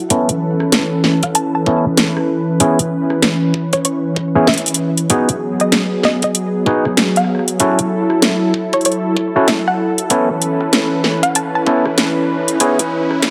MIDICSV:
0, 0, Header, 1, 6, 480
1, 0, Start_track
1, 0, Tempo, 625000
1, 81, Time_signature, 4, 2, 24, 8
1, 10217, End_track
2, 0, Start_track
2, 0, Title_t, "Synth pluck"
2, 0, Program_c, 0, 84
2, 948, Note_on_c, 0, 78, 89
2, 1023, Note_off_c, 0, 78, 0
2, 1038, Note_on_c, 0, 81, 89
2, 1133, Note_off_c, 0, 81, 0
2, 1190, Note_on_c, 0, 81, 73
2, 1249, Note_off_c, 0, 81, 0
2, 2866, Note_on_c, 0, 73, 89
2, 2927, Note_off_c, 0, 73, 0
2, 2958, Note_on_c, 0, 73, 79
2, 3053, Note_off_c, 0, 73, 0
2, 3440, Note_on_c, 0, 76, 87
2, 3558, Note_off_c, 0, 76, 0
2, 4309, Note_on_c, 0, 75, 90
2, 4435, Note_off_c, 0, 75, 0
2, 4646, Note_on_c, 0, 75, 91
2, 4737, Note_off_c, 0, 75, 0
2, 4792, Note_on_c, 0, 75, 74
2, 4850, Note_off_c, 0, 75, 0
2, 5507, Note_on_c, 0, 78, 93
2, 5900, Note_off_c, 0, 78, 0
2, 6709, Note_on_c, 0, 73, 91
2, 6768, Note_off_c, 0, 73, 0
2, 6803, Note_on_c, 0, 73, 76
2, 6896, Note_off_c, 0, 73, 0
2, 7281, Note_on_c, 0, 76, 89
2, 7398, Note_off_c, 0, 76, 0
2, 7431, Note_on_c, 0, 78, 92
2, 7556, Note_off_c, 0, 78, 0
2, 8624, Note_on_c, 0, 78, 92
2, 8701, Note_off_c, 0, 78, 0
2, 8724, Note_on_c, 0, 81, 90
2, 8816, Note_off_c, 0, 81, 0
2, 8873, Note_on_c, 0, 81, 78
2, 8930, Note_off_c, 0, 81, 0
2, 10217, End_track
3, 0, Start_track
3, 0, Title_t, "Clav"
3, 0, Program_c, 1, 7
3, 80, Note_on_c, 1, 59, 89
3, 80, Note_on_c, 1, 61, 82
3, 80, Note_on_c, 1, 64, 80
3, 80, Note_on_c, 1, 69, 97
3, 221, Note_off_c, 1, 64, 0
3, 222, Note_off_c, 1, 59, 0
3, 222, Note_off_c, 1, 61, 0
3, 222, Note_off_c, 1, 69, 0
3, 1280, Note_on_c, 1, 59, 86
3, 1280, Note_on_c, 1, 61, 77
3, 1280, Note_on_c, 1, 64, 78
3, 1280, Note_on_c, 1, 69, 89
3, 1421, Note_off_c, 1, 69, 0
3, 1422, Note_off_c, 1, 59, 0
3, 1422, Note_off_c, 1, 61, 0
3, 1422, Note_off_c, 1, 64, 0
3, 1998, Note_on_c, 1, 61, 81
3, 1998, Note_on_c, 1, 68, 97
3, 1999, Note_on_c, 1, 59, 92
3, 1999, Note_on_c, 1, 64, 82
3, 2141, Note_off_c, 1, 59, 0
3, 2141, Note_off_c, 1, 61, 0
3, 2141, Note_off_c, 1, 64, 0
3, 2141, Note_off_c, 1, 68, 0
3, 3343, Note_on_c, 1, 59, 84
3, 3343, Note_on_c, 1, 61, 77
3, 3343, Note_on_c, 1, 64, 78
3, 3344, Note_on_c, 1, 68, 93
3, 3436, Note_off_c, 1, 59, 0
3, 3436, Note_off_c, 1, 61, 0
3, 3436, Note_off_c, 1, 64, 0
3, 3436, Note_off_c, 1, 68, 0
3, 3916, Note_on_c, 1, 59, 92
3, 3916, Note_on_c, 1, 63, 81
3, 3916, Note_on_c, 1, 66, 82
3, 3916, Note_on_c, 1, 68, 98
3, 4060, Note_off_c, 1, 59, 0
3, 4060, Note_off_c, 1, 63, 0
3, 4060, Note_off_c, 1, 66, 0
3, 4060, Note_off_c, 1, 68, 0
3, 5116, Note_on_c, 1, 63, 78
3, 5117, Note_on_c, 1, 59, 85
3, 5117, Note_on_c, 1, 66, 76
3, 5117, Note_on_c, 1, 68, 92
3, 5260, Note_off_c, 1, 59, 0
3, 5260, Note_off_c, 1, 63, 0
3, 5260, Note_off_c, 1, 66, 0
3, 5260, Note_off_c, 1, 68, 0
3, 5837, Note_on_c, 1, 61, 90
3, 5837, Note_on_c, 1, 64, 84
3, 5839, Note_on_c, 1, 66, 84
3, 5839, Note_on_c, 1, 69, 100
3, 5980, Note_off_c, 1, 61, 0
3, 5980, Note_off_c, 1, 64, 0
3, 5981, Note_off_c, 1, 66, 0
3, 5981, Note_off_c, 1, 69, 0
3, 7186, Note_on_c, 1, 64, 79
3, 7186, Note_on_c, 1, 69, 96
3, 7187, Note_on_c, 1, 61, 87
3, 7187, Note_on_c, 1, 66, 78
3, 7277, Note_off_c, 1, 64, 0
3, 7277, Note_off_c, 1, 69, 0
3, 7278, Note_off_c, 1, 61, 0
3, 7278, Note_off_c, 1, 66, 0
3, 7758, Note_on_c, 1, 64, 86
3, 7759, Note_on_c, 1, 59, 93
3, 7759, Note_on_c, 1, 61, 84
3, 7760, Note_on_c, 1, 69, 103
3, 7901, Note_off_c, 1, 59, 0
3, 7901, Note_off_c, 1, 61, 0
3, 7901, Note_off_c, 1, 64, 0
3, 7902, Note_off_c, 1, 69, 0
3, 8960, Note_on_c, 1, 59, 89
3, 8960, Note_on_c, 1, 64, 80
3, 8960, Note_on_c, 1, 69, 93
3, 8961, Note_on_c, 1, 61, 79
3, 9101, Note_off_c, 1, 59, 0
3, 9101, Note_off_c, 1, 64, 0
3, 9102, Note_off_c, 1, 61, 0
3, 9102, Note_off_c, 1, 69, 0
3, 9680, Note_on_c, 1, 59, 93
3, 9680, Note_on_c, 1, 64, 83
3, 9680, Note_on_c, 1, 68, 103
3, 9681, Note_on_c, 1, 61, 85
3, 9822, Note_off_c, 1, 59, 0
3, 9822, Note_off_c, 1, 61, 0
3, 9822, Note_off_c, 1, 64, 0
3, 9822, Note_off_c, 1, 68, 0
3, 10217, End_track
4, 0, Start_track
4, 0, Title_t, "Analog synth pad"
4, 0, Program_c, 2, 89
4, 78, Note_on_c, 2, 61, 72
4, 78, Note_on_c, 2, 71, 86
4, 79, Note_on_c, 2, 69, 73
4, 81, Note_on_c, 2, 52, 77
4, 1980, Note_off_c, 2, 61, 0
4, 1981, Note_off_c, 2, 69, 0
4, 1992, Note_on_c, 2, 61, 73
4, 3889, Note_off_c, 2, 71, 0
4, 3890, Note_off_c, 2, 52, 0
4, 3898, Note_off_c, 2, 61, 0
4, 3919, Note_on_c, 2, 68, 88
4, 3921, Note_on_c, 2, 59, 74
4, 3922, Note_on_c, 2, 54, 79
4, 5821, Note_off_c, 2, 68, 0
4, 5822, Note_off_c, 2, 59, 0
4, 5838, Note_on_c, 2, 64, 72
4, 5839, Note_on_c, 2, 69, 87
4, 7731, Note_off_c, 2, 54, 0
4, 7741, Note_off_c, 2, 64, 0
4, 7760, Note_on_c, 2, 52, 79
4, 7760, Note_on_c, 2, 61, 73
4, 7762, Note_on_c, 2, 71, 89
4, 9649, Note_off_c, 2, 69, 0
4, 10217, Note_off_c, 2, 52, 0
4, 10217, Note_off_c, 2, 61, 0
4, 10217, Note_off_c, 2, 71, 0
4, 10217, End_track
5, 0, Start_track
5, 0, Title_t, "Riser"
5, 0, Program_c, 3, 103
5, 5838, Note_on_c, 3, 60, 79
5, 10217, Note_off_c, 3, 60, 0
5, 10217, End_track
6, 0, Start_track
6, 0, Title_t, "Drums"
6, 78, Note_on_c, 9, 42, 77
6, 79, Note_on_c, 9, 36, 116
6, 155, Note_off_c, 9, 42, 0
6, 156, Note_off_c, 9, 36, 0
6, 222, Note_on_c, 9, 42, 52
6, 299, Note_off_c, 9, 42, 0
6, 462, Note_on_c, 9, 37, 35
6, 539, Note_off_c, 9, 37, 0
6, 555, Note_on_c, 9, 38, 112
6, 555, Note_on_c, 9, 42, 77
6, 632, Note_off_c, 9, 38, 0
6, 632, Note_off_c, 9, 42, 0
6, 797, Note_on_c, 9, 38, 60
6, 874, Note_off_c, 9, 38, 0
6, 942, Note_on_c, 9, 42, 36
6, 944, Note_on_c, 9, 36, 100
6, 1019, Note_off_c, 9, 42, 0
6, 1021, Note_off_c, 9, 36, 0
6, 1036, Note_on_c, 9, 42, 79
6, 1113, Note_off_c, 9, 42, 0
6, 1278, Note_on_c, 9, 36, 105
6, 1355, Note_off_c, 9, 36, 0
6, 1516, Note_on_c, 9, 38, 122
6, 1516, Note_on_c, 9, 42, 81
6, 1593, Note_off_c, 9, 38, 0
6, 1593, Note_off_c, 9, 42, 0
6, 1664, Note_on_c, 9, 37, 39
6, 1741, Note_off_c, 9, 37, 0
6, 1997, Note_on_c, 9, 42, 78
6, 1999, Note_on_c, 9, 36, 119
6, 2074, Note_off_c, 9, 42, 0
6, 2076, Note_off_c, 9, 36, 0
6, 2144, Note_on_c, 9, 42, 52
6, 2221, Note_off_c, 9, 42, 0
6, 2382, Note_on_c, 9, 37, 34
6, 2459, Note_off_c, 9, 37, 0
6, 2476, Note_on_c, 9, 38, 116
6, 2476, Note_on_c, 9, 42, 75
6, 2553, Note_off_c, 9, 38, 0
6, 2553, Note_off_c, 9, 42, 0
6, 2719, Note_on_c, 9, 36, 62
6, 2796, Note_off_c, 9, 36, 0
6, 2862, Note_on_c, 9, 42, 36
6, 2865, Note_on_c, 9, 36, 102
6, 2939, Note_off_c, 9, 42, 0
6, 2942, Note_off_c, 9, 36, 0
6, 2955, Note_on_c, 9, 42, 79
6, 3032, Note_off_c, 9, 42, 0
6, 3198, Note_on_c, 9, 36, 108
6, 3275, Note_off_c, 9, 36, 0
6, 3435, Note_on_c, 9, 38, 124
6, 3435, Note_on_c, 9, 42, 35
6, 3484, Note_off_c, 9, 42, 0
6, 3484, Note_on_c, 9, 42, 42
6, 3512, Note_off_c, 9, 38, 0
6, 3514, Note_off_c, 9, 42, 0
6, 3514, Note_on_c, 9, 42, 48
6, 3580, Note_off_c, 9, 42, 0
6, 3580, Note_on_c, 9, 42, 56
6, 3593, Note_off_c, 9, 42, 0
6, 3593, Note_on_c, 9, 42, 63
6, 3643, Note_off_c, 9, 42, 0
6, 3643, Note_on_c, 9, 42, 71
6, 3720, Note_off_c, 9, 42, 0
6, 3821, Note_on_c, 9, 42, 52
6, 3897, Note_off_c, 9, 42, 0
6, 3914, Note_on_c, 9, 42, 78
6, 3917, Note_on_c, 9, 36, 118
6, 3991, Note_off_c, 9, 42, 0
6, 3994, Note_off_c, 9, 36, 0
6, 4060, Note_on_c, 9, 42, 50
6, 4137, Note_off_c, 9, 42, 0
6, 4300, Note_on_c, 9, 37, 35
6, 4300, Note_on_c, 9, 42, 35
6, 4377, Note_off_c, 9, 37, 0
6, 4377, Note_off_c, 9, 42, 0
6, 4394, Note_on_c, 9, 38, 115
6, 4394, Note_on_c, 9, 42, 74
6, 4471, Note_off_c, 9, 38, 0
6, 4471, Note_off_c, 9, 42, 0
6, 4634, Note_on_c, 9, 38, 62
6, 4711, Note_off_c, 9, 38, 0
6, 4779, Note_on_c, 9, 42, 35
6, 4783, Note_on_c, 9, 36, 101
6, 4855, Note_off_c, 9, 42, 0
6, 4860, Note_off_c, 9, 36, 0
6, 4875, Note_on_c, 9, 42, 75
6, 4952, Note_off_c, 9, 42, 0
6, 5117, Note_on_c, 9, 36, 112
6, 5194, Note_off_c, 9, 36, 0
6, 5263, Note_on_c, 9, 37, 35
6, 5340, Note_off_c, 9, 37, 0
6, 5355, Note_on_c, 9, 38, 120
6, 5355, Note_on_c, 9, 42, 77
6, 5432, Note_off_c, 9, 38, 0
6, 5432, Note_off_c, 9, 42, 0
6, 5500, Note_on_c, 9, 37, 17
6, 5500, Note_on_c, 9, 42, 37
6, 5512, Note_off_c, 9, 37, 0
6, 5512, Note_on_c, 9, 37, 20
6, 5563, Note_off_c, 9, 37, 0
6, 5563, Note_on_c, 9, 37, 23
6, 5577, Note_off_c, 9, 42, 0
6, 5640, Note_off_c, 9, 37, 0
6, 5643, Note_on_c, 9, 37, 29
6, 5677, Note_off_c, 9, 37, 0
6, 5677, Note_on_c, 9, 37, 31
6, 5743, Note_on_c, 9, 42, 50
6, 5753, Note_off_c, 9, 37, 0
6, 5819, Note_off_c, 9, 42, 0
6, 5834, Note_on_c, 9, 42, 78
6, 5838, Note_on_c, 9, 36, 116
6, 5911, Note_off_c, 9, 42, 0
6, 5915, Note_off_c, 9, 36, 0
6, 5981, Note_on_c, 9, 42, 50
6, 6057, Note_off_c, 9, 42, 0
6, 6221, Note_on_c, 9, 37, 35
6, 6298, Note_off_c, 9, 37, 0
6, 6315, Note_on_c, 9, 38, 115
6, 6315, Note_on_c, 9, 42, 69
6, 6392, Note_off_c, 9, 38, 0
6, 6392, Note_off_c, 9, 42, 0
6, 6559, Note_on_c, 9, 36, 60
6, 6635, Note_off_c, 9, 36, 0
6, 6704, Note_on_c, 9, 42, 16
6, 6705, Note_on_c, 9, 36, 102
6, 6766, Note_off_c, 9, 42, 0
6, 6766, Note_on_c, 9, 42, 21
6, 6782, Note_off_c, 9, 36, 0
6, 6797, Note_off_c, 9, 42, 0
6, 6797, Note_on_c, 9, 42, 73
6, 6847, Note_off_c, 9, 42, 0
6, 6847, Note_on_c, 9, 42, 27
6, 6924, Note_off_c, 9, 42, 0
6, 7039, Note_on_c, 9, 36, 108
6, 7116, Note_off_c, 9, 36, 0
6, 7278, Note_on_c, 9, 38, 115
6, 7278, Note_on_c, 9, 42, 75
6, 7355, Note_off_c, 9, 38, 0
6, 7355, Note_off_c, 9, 42, 0
6, 7665, Note_on_c, 9, 42, 48
6, 7742, Note_off_c, 9, 42, 0
6, 7757, Note_on_c, 9, 42, 74
6, 7759, Note_on_c, 9, 36, 116
6, 7834, Note_off_c, 9, 42, 0
6, 7836, Note_off_c, 9, 36, 0
6, 7999, Note_on_c, 9, 42, 49
6, 8076, Note_off_c, 9, 42, 0
6, 8145, Note_on_c, 9, 37, 37
6, 8222, Note_off_c, 9, 37, 0
6, 8239, Note_on_c, 9, 38, 108
6, 8239, Note_on_c, 9, 42, 71
6, 8316, Note_off_c, 9, 38, 0
6, 8316, Note_off_c, 9, 42, 0
6, 8478, Note_on_c, 9, 38, 59
6, 8555, Note_off_c, 9, 38, 0
6, 8624, Note_on_c, 9, 42, 35
6, 8625, Note_on_c, 9, 36, 98
6, 8701, Note_off_c, 9, 42, 0
6, 8702, Note_off_c, 9, 36, 0
6, 8718, Note_on_c, 9, 42, 74
6, 8795, Note_off_c, 9, 42, 0
6, 8959, Note_on_c, 9, 36, 103
6, 9036, Note_off_c, 9, 36, 0
6, 9105, Note_on_c, 9, 37, 38
6, 9181, Note_off_c, 9, 37, 0
6, 9198, Note_on_c, 9, 38, 115
6, 9198, Note_on_c, 9, 42, 76
6, 9275, Note_off_c, 9, 38, 0
6, 9275, Note_off_c, 9, 42, 0
6, 9585, Note_on_c, 9, 42, 50
6, 9662, Note_off_c, 9, 42, 0
6, 9678, Note_on_c, 9, 42, 81
6, 9679, Note_on_c, 9, 36, 113
6, 9754, Note_off_c, 9, 42, 0
6, 9756, Note_off_c, 9, 36, 0
6, 9825, Note_on_c, 9, 42, 52
6, 9902, Note_off_c, 9, 42, 0
6, 10065, Note_on_c, 9, 37, 38
6, 10142, Note_off_c, 9, 37, 0
6, 10156, Note_on_c, 9, 38, 110
6, 10156, Note_on_c, 9, 42, 73
6, 10217, Note_off_c, 9, 38, 0
6, 10217, Note_off_c, 9, 42, 0
6, 10217, End_track
0, 0, End_of_file